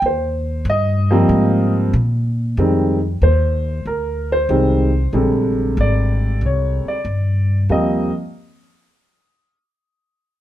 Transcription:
0.02 D#2 C5
0.65 G2
0.70 D#5
1.11 F3 G3 A#3 C4
1.29 G#2
1.93 A#2
2.57 F2 D#3 G3 G#3 C4
3.22 D#2 C5
3.85 D2 A#4
4.32 C5
4.49 C2 D#3 G3 G#3 C4
5.13 A#1 C3 D3 G3 G#3
5.77 G#1 D5
6.41 C2
6.46 C#5
6.85 D5, muted upright bass stroke
7.05 G2
7.69 D#2 F3 G3 A#3 C4 D#5

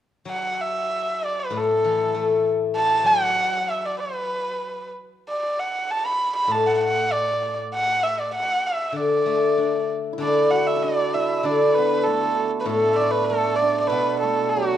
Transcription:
0.25 F#3
0.30 F#5
0.61 E5
1.25 D5
1.40 B4
1.50 A2
1.57 A4
1.84 E3
2.15 A3
2.76 A5
3.04 F#3 F#5
3.70 E5
3.85 D5
4.00 B4
5.29 D5
5.59 F#5
5.91 A5
6.06 B5
6.36 B5
6.47 A2
6.52 A5
6.66 F#5 A5
6.77 F#5
6.84 F#5
7.12 D5
7.74 F#5
8.03 E5
8.20 D5
8.35 F#5
8.67 E5
8.90 D3 E5
8.97 D5
9.26 A3
9.58 D4
10.13 E4
10.18 D3 D4 D5
10.51 F#4 F#5
10.67 E5
10.77 E4
10.83 D4 D5
11.14 E4 E5
11.43 D3 D4 D5
11.75 B3 B4
12.04 A3 A4
12.60 B4
12.65 A2 A3 A4
12.93 D5 E5
13.00 D4
13.11 B4
13.25 A4
13.30 A3
13.55 D5
13.62 D4
13.80 D5
13.87 B2 D4 B4
13.92 B3
14.20 A3 A4
14.50 F#4
14.56 F#3

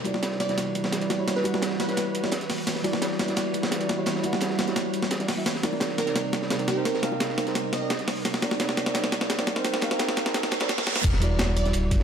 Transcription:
Already playing: E3 G3 F#4 B4
0.04 G3 E4 F#4 D5, closed hi-hat, ride, high bongo
0.14 snare, high bongo
0.23 snare, closed hi-hat, ride
0.32 snare
0.40 D5, snare, closed hi-hat, ride
0.47 G3 E4 F#4 D5, snare, closed hi-hat
0.58 snare, closed hi-hat, ride
0.75 closed hi-hat, ride, high bongo
0.84 snare
0.92 snare, closed hi-hat, ride
1.01 G3 E4 F#4 D5, closed hi-hat, ride
1.10 snare, closed hi-hat, ride, high bongo
1.18 G3 E4 F#4 C#5
1.28 snare, closed hi-hat, ride
1.36 B4, snare
1.43 G3 E4 F#4 F#5, closed hi-hat, ride, high bongo
1.54 snare, high bongo
1.62 snare, closed hi-hat, ride
1.70 snare
1.80 B4, snare, closed hi-hat, ride
1.88 G3 E4 F#4 C#5, snare, closed hi-hat
1.97 snare, closed hi-hat, ride
2.15 closed hi-hat, ride
2.23 G3 E4 F#4 D5, snare
2.31 snare, closed hi-hat, ride
2.41 snare, closed hi-hat
2.50 snare, closed hi-hat, open hi-hat
2.58 ride
2.67 snare, closed hi-hat, ride
2.75 snare
2.83 G3 E4 F#4 D5, closed hi-hat, ride, high bongo
2.93 snare, high bongo
3.02 snare, closed hi-hat, ride
3.12 snare
3.19 snare, closed hi-hat, ride
3.26 G3 E4 F#4 D5, snare, closed hi-hat
3.36 snare, closed hi-hat, ride
3.54 closed hi-hat, ride, high bongo
3.62 snare
3.71 snare, closed hi-hat, ride
3.80 G3 E4 F#4 D5, closed hi-hat, ride
3.89 snare, closed hi-hat, ride, high bongo
3.97 G3 E4 F#4 C#5
4.06 snare, closed hi-hat, ride
4.15 snare
4.22 G3 E4 F#4 F#5, closed hi-hat, ride, high bongo
4.33 snare, high bongo
4.40 snare, closed hi-hat, ride
4.50 snare
4.58 snare, closed hi-hat, ride
4.67 G3 E4 F#4 C#5, snare, closed hi-hat
4.76 snare, closed hi-hat, ride
4.93 closed hi-hat, ride
5.03 snare
5.10 snare, closed hi-hat, ride
5.19 G3 E4 F#4 D5, snare, closed hi-hat
5.28 snare, closed hi-hat, open hi-hat
5.36 G3 E4 F#4 E5, ride
5.46 C3 D#4 A#4, snare, closed hi-hat, ride, riser
5.55 snare
5.62 C4 D#4 A#4 D5, snare, closed hi-hat, ride, high bongo
5.73 high bongo
5.80 snare, closed hi-hat, ride
5.89 snare
5.98 A#4, snare, closed hi-hat, ride
6.06 C4 D#4 A#4 D5, snare, closed hi-hat
6.15 snare, closed hi-hat, ride
6.32 snare, closed hi-hat, ride, high bongo
6.42 snare
6.50 snare, closed hi-hat, ride
6.59 C4 D#4 A#4 D5, closed hi-hat, ride
6.68 G4, snare, closed hi-hat, ride, high bongo
6.76 C4 D#4 A#4 C5
6.85 A#4, snare, closed hi-hat, ride
6.94 A#4, snare
7.01 C4 D#4 A#4 F5, snare, closed hi-hat, ride, high bongo
7.12 high bongo
7.20 snare, closed hi-hat, ride
7.29 snare
7.38 snare, closed hi-hat, ride
7.46 C4 D#4 A#4 C5, snare, closed hi-hat
7.55 snare, closed hi-hat, ride
7.73 D#5, snare, closed hi-hat, ride
7.81 C4 D#4 A#4 D5
7.90 snare, closed hi-hat, ride
7.99 snare, closed hi-hat
8.07 snare, closed hi-hat, open hi-hat
8.17 ride
8.25 snare, closed hi-hat, ride
8.33 snare
8.41 C4 D#4 A#4 D5, snare, closed hi-hat, ride, high bongo
8.51 snare, high bongo
8.60 snare, closed hi-hat, ride
8.69 snare
8.77 snare, closed hi-hat, ride
8.84 C4 D#4 A#4 D5, snare, closed hi-hat
8.94 snare, closed hi-hat, ride
9.04 snare
9.12 snare, closed hi-hat, ride, high bongo
9.21 snare
9.30 snare, closed hi-hat, ride
9.38 C4 D#4 A#4 D5, snare, closed hi-hat, ride
9.47 snare, closed hi-hat, ride, high bongo
9.55 C4 D#4 A#4 C5, snare
9.65 snare, closed hi-hat, ride
9.74 snare
9.80 C4 D#4 A#4 F5, snare, closed hi-hat, ride, high bongo
9.91 snare, closed hi-hat, high bongo
9.99 snare, closed hi-hat, ride
10.08 snare
10.17 snare, closed hi-hat, ride
10.25 C4 D#4 A#4 C5, snare, closed hi-hat
10.34 snare, closed hi-hat, ride, reverse cymbal
10.43 snare, ride
10.51 snare, closed hi-hat, ride
10.60 C4 D#4 A#4 D5, snare, ride
10.68 snare, closed hi-hat, ride
10.78 snare, closed hi-hat, ride
10.87 snare, closed hi-hat, ride
10.96 snare, ride
11.04 E1, kick, closed hi-hat, crash, ride, sub drop
11.13 snare
11.20 G3 E4 F#4 D5, closed hi-hat, ride
11.39 snare, closed hi-hat, ride
11.48 snare
11.57 D5, closed hi-hat, ride
11.64 G3 E4 F#4 D5, snare, closed hi-hat
11.73 D1, closed hi-hat, ride
11.91 G1, kick, closed hi-hat, ride
12.00 snare

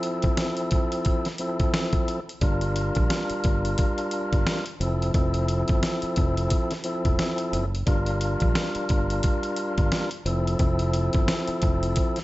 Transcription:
Already playing: F3 C4 E4 A4
0.03 closed hi-hat
0.22 kick, closed hi-hat
0.37 snare, closed hi-hat
0.57 closed hi-hat
0.71 kick, closed hi-hat
0.92 closed hi-hat
1.05 kick, closed hi-hat
1.25 snare, closed hi-hat
1.38 F3 C4 E4 A4, closed hi-hat
1.60 kick, closed hi-hat
1.74 snare, closed hi-hat
1.93 kick, closed hi-hat
2.08 closed hi-hat
2.29 closed hi-hat
2.41 G1 G3 D4 F4 A#4, kick, closed hi-hat
2.61 closed hi-hat
2.76 closed hi-hat
2.95 A#1, kick, closed hi-hat
3.10 snare, closed hi-hat
3.30 muted fingered electric bass stroke, closed hi-hat
3.44 G1, kick, closed hi-hat
3.65 closed hi-hat
3.78 kick, closed hi-hat
3.98 closed hi-hat
4.11 closed hi-hat
4.33 G1, kick, closed hi-hat
4.47 snare, closed hi-hat
4.66 closed hi-hat
4.80 F1 F3 C4 E4 A4, closed hi-hat
5.02 closed hi-hat
5.13 F1 F3 C4 E4 A4, kick, closed hi-hat
5.34 closed hi-hat
5.48 closed hi-hat
5.68 G1, kick, closed hi-hat
5.83 snare, closed hi-hat
6.02 muted fingered electric bass stroke, closed hi-hat
6.16 F1, kick, closed hi-hat
6.37 closed hi-hat
6.50 kick, closed hi-hat
6.71 snare, closed hi-hat
6.84 F3 C4 E4 A4, closed hi-hat
7.05 E1, kick, closed hi-hat
7.19 snare, closed hi-hat
7.38 closed hi-hat
7.53 F#1, closed hi-hat
7.75 closed hi-hat
7.86 G1 G3 D4 F4 A#4, kick, closed hi-hat
8.06 closed hi-hat
8.21 closed hi-hat
8.40 A#1, kick, closed hi-hat
8.55 snare, closed hi-hat
8.75 muted fingered electric bass stroke, closed hi-hat
8.89 G1, kick, closed hi-hat
9.10 closed hi-hat
9.23 kick, closed hi-hat
9.43 closed hi-hat
9.56 closed hi-hat
9.78 G1, kick, closed hi-hat
9.92 snare, closed hi-hat
10.11 closed hi-hat
10.25 F1 F3 C4 E4 A4, closed hi-hat
10.47 closed hi-hat
10.59 F1 F3 C4 E4 A4, kick, closed hi-hat
10.79 closed hi-hat
10.93 closed hi-hat
11.13 G1, kick, closed hi-hat
11.28 snare, closed hi-hat
11.47 muted fingered electric bass stroke, closed hi-hat
11.62 F1, kick, closed hi-hat
11.83 closed hi-hat
11.96 kick, closed hi-hat
12.16 snare, closed hi-hat

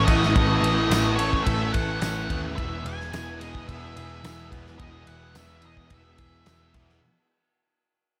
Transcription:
Already playing: A2 E3 C#4 E4 A4 B4 A5 C#6
0.05 A1 A3 B3 C#4 E4 D#5, kick, ride
0.09 A2 E3 A3
0.23 snare
0.34 A1 A2 E3 A3 C#4 E4, kick, ride
0.62 A1 E3 A3 C#4 E4, ride
0.89 A1 A2 E3 A3 B3 C#4 E4, snare, ride, tambourine
1.16 A3 C#4 E4 A4 C#5, ride
1.21 E3
1.33 kick
1.44 A1 A2 E3 A3 C#4 E4 E5, kick, ride
1.49 A3
1.72 A1 A3 C#4 E4 A4 F#5, kick, ride
1.77 E3
2.00 A1 A2 E3 A3 C#4 E4 F#5, snare, ride, tambourine
2.05 A3
2.29 D#2 A2 E3 A3 B3 C#4 E4, kick, ride
2.56 E1 E2 B2 E3 G#3 B3 B4 E5 G#5 D#6, kick, ride
2.61 E4
2.83 E1 B2 E3 B3 E4 G#5, ride
2.88 G#3
3.00 snare
3.11 E1 E2 B2 E3 G#3 B3 G#5, snare, ride, tambourine
3.15 E4
3.39 B2 E3 B3 E4 G#4 D#5, ride
3.43 G#3
3.55 kick
3.68 E1 E2 B2 E3 G#3 B3 E4 E5, kick, ride
3.95 E1 B2 E3 B3 E4 G#4, ride
3.99 G#3
4.22 E1 E2 B2 E3 G#3 B3 E4, snare, ride, tambourine
4.49 E1 B2 E3 B3 E4, kick, ride
4.53 E2 G#3 B3
4.67 snare
4.76 E1 E2 B2 E3 G#3 D#5, kick, ride
4.81 B3 E4
5.05 E1 B2 E3 B3 E4 F#5, ride
5.09 G#3
5.33 E1 E2 B2 E3 G#3 B3, snare, ride, tambourine
5.37 E4 E5
5.61 B2 E3 G#3 B3 E4 G#4, ride
5.66 D#5
5.77 kick
5.89 E1 E2 B2 E3 G#3 B3 E4, kick, ride
5.94 E5
6.17 E1 B2 E3 G#3 B3 E4 G#4, kick, ride
6.45 E1 E2 B2 E3 G#3 B3 E4, snare, ride, tambourine
6.73 E1 E2 E3 G#3 B3 E4, kick, ride
6.77 B2
6.89 snare

